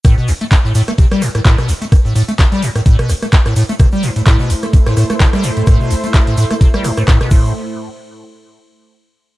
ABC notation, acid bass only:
X:1
M:4/4
L:1/16
Q:"Swing 16ths" 1/4=128
K:Am
V:1 name="Acid bass" clef=bass
A,, B,, A,,, A, G,, A,, A,, A, C, G, A,, A,, A,, B,, A,,, A, | G,, A,, A,, A, C, G, A,, A,, A,, B,, A,,, A, G,, A,, A,, A, | C, G, A,, A,, A,, B,, A,,, A, G,, A,, A,, A, C, G, A,, A,, | A,, B,, A,,, A, G,, A,, A,, A, C, G, A,, A,, A,, B,, A,,2 |
z16 |]